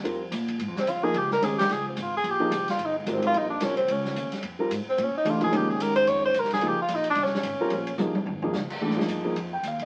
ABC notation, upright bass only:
X:1
M:4/4
L:1/8
Q:"Swing" 1/4=219
K:Bbdor
V:1 name="Upright bass" clef=bass
F,,2 B,,2 (3A,, F,, D,, F,,2 | D,,2 E,,2 D,,2 A,,,2 | B,,,2 C,, z G,,,2 A,,,2 | B,,,2 C,,2 D,,2 E,, z |
F,,2 A,, z B,, z C,2 | B,,2 A,,2 F,,2 C,,2 | D,, z B,,,2 C,,2 A,,, z | B,,,2 C,,2 A,,,2 D,, z |
(3B,, A,, F,, G,,2 F,,2 E,,2 |]